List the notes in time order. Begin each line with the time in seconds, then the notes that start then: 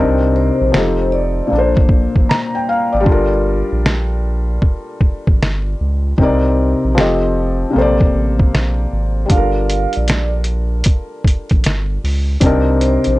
Already playing: C2 C3 C4 D4 D#4
0.00 A#4
0.36 C5
0.61 A#1
0.72 F1 F3 C4 D#4, snare
0.76 G4 A4
1.12 D5
1.47 A#2 A#3
1.52 A#1 D4
1.56 A4 C5
1.77 kick
1.89 kick
2.16 A1, kick
2.29 A#5, snare
2.55 G5
2.69 F5
2.93 G#1 D5
3.01 G3 D4
3.06 G1 F4 A4, kick
3.12 A#4
3.72 A#1
3.86 snare
4.62 kick
5.01 kick
5.27 A1, kick
5.42 G1, snare
5.81 C#2
6.18 C2 C3 C4 D#4 A#4, kick
6.23 D5
6.84 A#1
6.95 F1 F3 C4 G4, snare
6.99 A4 D#5
7.70 C3 A#3
7.76 A#1 A4 C5
7.81 D5
8.01 kick
8.14 A1
8.39 kick
8.54 A#1, snare
8.93 G#1
9.26 G3 D4, closed hi-hat
9.30 G1 F4 F5, kick
9.34 A4 A#4
9.70 closed hi-hat
9.93 A#1 D5, closed hi-hat
10.08 snare, closed hi-hat
10.44 closed hi-hat
10.84 kick, closed hi-hat
11.24 kick, closed hi-hat
11.49 A1, kick, closed hi-hat
11.64 G1, snare, closed hi-hat
12.04 C#2, open hi-hat
12.40 C2 C3 C4 D4, kick, closed hi-hat
12.45 D#4 A#4
12.81 C5, closed hi-hat
13.04 A#1, closed hi-hat